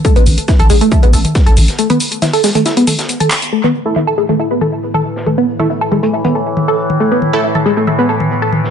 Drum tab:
HH |xxoxxxoxxxoxxxox|xxoxxooxxxoxxxox|----------------|-------x-x------|
SH |xxxxxxxxxxxxxxxx|xxxxxxxxxxxxxxxx|----x-x-x-x-x-x-|x-x-x-x-x-x-x-x-|
CP |----------------|--------------x-|----------------|----------------|
SD |----o-------o--o|----o-o-o--o----|---------------o|----------------|
T2 |--o--o--o--o--o-|-o--o--o--o--o--|-o--o--o--o--o--|o--o--o--o--o--o|
BD |o---o---o---o---|----------------|----------------|----------------|

HH |----------------|
SH |x-x-x-x-x-x-x-x-|
CP |----------------|
SD |---------------o|
T2 |--o--o--o--o--o-|
BD |----------------|